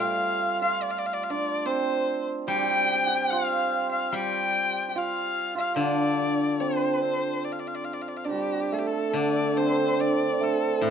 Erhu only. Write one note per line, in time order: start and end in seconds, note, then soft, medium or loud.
0.00 0.61 F5 loud
0.62 0.84 F5 medium
0.82 0.92 D5 medium
0.90 0.99 F5 medium
0.98 1.07 D5 medium
1.06 1.14 F5 medium
1.13 1.24 D5 medium
1.23 1.31 F5 medium
1.30 1.67 D5 medium
1.65 2.27 C5 medium
2.48 3.32 G5 loud
3.30 3.91 F5 medium
3.91 4.16 F5 medium
4.14 4.89 G5 loud
4.89 4.99 G5 medium
4.97 5.57 F5 medium
5.58 5.76 F5 medium
5.77 6.62 D5 medium
6.60 7.02 C5 medium
7.03 7.46 C5 medium
7.44 7.53 D5 medium
7.52 7.61 F5 medium
7.59 7.68 D5 medium
7.67 7.76 F5 medium
7.75 7.85 D5 medium
7.84 7.95 F5 medium
7.93 8.03 D5 medium
8.02 8.09 F5 medium
8.08 8.18 D5 medium
8.16 8.26 F5 medium
8.24 8.29 D5 medium
8.30 8.75 G4 medium
8.73 8.80 A4 medium
8.78 8.88 G4 medium
8.87 9.16 A4 medium
9.15 9.58 D5 medium
9.57 10.02 C5 medium
10.00 10.44 D5 medium
10.43 10.84 A4 medium
10.85 10.90 A4 medium